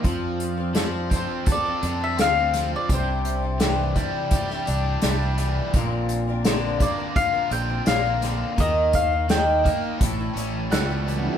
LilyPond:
<<
  \new Staff \with { instrumentName = "Mandolin" } { \time 4/4 \key f \major \tempo 4 = 84 r4. c''8 d''8. e''16 f''8. d''16 | c''2.~ c''8 r8 | r4. d''8 f''8 g''8 f''4 | ees''8 f''8 g''4. r8 ges''4 | }
  \new Staff \with { instrumentName = "Twelve-string acoustic guitar" } { \time 4/4 \key f \major <f c' d' a'>8. <c' d' a'>16 <f c' d' a'>8 <f c' d' a'>16 <c' d' a'>8 <c' d' a'>16 <f c' d' a'>16 <c' d' a'>16 <f c' d' a'>16 <c' d' a'>16 <f c' d' a'>8 | <c g d' e' g'>8. <d' e' g'>16 <c g d' e' g'>8 <g d' e' g'>8. <d' e' g'>16 <g d' e' g'>8 <c g d' e' g'>16 <d' e' g'>16 <g d' e' g'>8 | <bes, d f c' d' bes'>8. <f c' d' bes'>16 <bes, d f c' d' bes'>8 <f c' d' bes'>16 <f c' d' bes'>8 <f c' d' bes'>16 <f c' d' bes'>16 <f c' d' bes'>16 <bes, d f c' d' bes'>16 <f c' d' bes'>16 <f c' d' bes'>8 | <ees g bes ees' bes'>8. <bes ees' bes'>16 <ees g bes ees' bes'>8 <g bes ees' bes'>16 <bes ees' bes'>16 <a, e g cis' e' a'>16 <g cis' e' a'>16 <g cis' e' a'>8 <a, e g cis' e' a'>16 <g cis' e' a'>16 <g cis' e' a'>8 | }
  \new Staff \with { instrumentName = "Overdriven electric guitar" } { \clef bass \time 4/4 \key f \major f4 f8 c'8 a'8 d'8 c'8 f8 | c4 e8 g8 g'8 d'8 g8 e8 | bes,4 d8 bes8 f'8 c'8 bes8 d8 | ees4 ees8 bes8 a,8 cis'8 g8 e8 | }
  \new Staff \with { instrumentName = "Fingered electric bass" } { \clef bass \time 4/4 \key f \major f,2 r8 f,8 d,4 | c,2 r8 c,8 c,4 | bes,,2 r8 bes,,8 bes,,4 | ees,2 a,,8 a,,8 cis,4 | }
  \new DrumStaff \with { instrumentName = "Drums" } \drummode { \time 4/4 <hh bd>8 hh8 <hh sn>8 <hh bd>8 <hh bd>8 hh8 <hh sn>8 <hh sn>8 | <hh bd>8 hh8 <hh sn>8 <hh bd>8 <hh bd>16 sn16 hh8 <hh sn>8 hh8 | <hh bd>8 hh8 <hh sn>8 <hh bd>8 <hh bd>8 hh8 <hh sn>8 <hh sn>8 | <hh bd>8 <hh bd>8 <hh sn>8 <hh bd>8 <hh bd>8 hh8 <hh sn>8 hh8 | }
>>